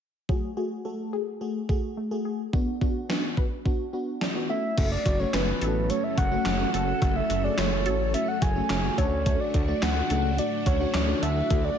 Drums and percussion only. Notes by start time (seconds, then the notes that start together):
0.29 kick
1.69 kick
2.53 kick
2.81 kick
3.10 snare
3.37 kick
3.66 kick
4.21 snare
4.78 kick, closed hi-hat, crash
5.06 kick, closed hi-hat
5.34 snare, clap, closed hi-hat
5.61 closed hi-hat
5.90 closed hi-hat
6.18 kick, closed hi-hat
6.45 snare, clap, closed hi-hat
6.74 closed hi-hat
7.02 kick, closed hi-hat
7.30 closed hi-hat
7.58 snare, clap, closed hi-hat
7.86 closed hi-hat
8.14 closed hi-hat
8.42 kick, closed hi-hat
8.70 snare, clap, closed hi-hat
8.98 kick, closed hi-hat
9.26 kick, closed hi-hat
9.54 kick, closed hi-hat
9.82 snare, clap, closed hi-hat
10.10 closed hi-hat
10.38 closed hi-hat
10.66 kick, closed hi-hat
10.94 snare, clap, closed hi-hat
11.23 closed hi-hat
11.50 kick, closed hi-hat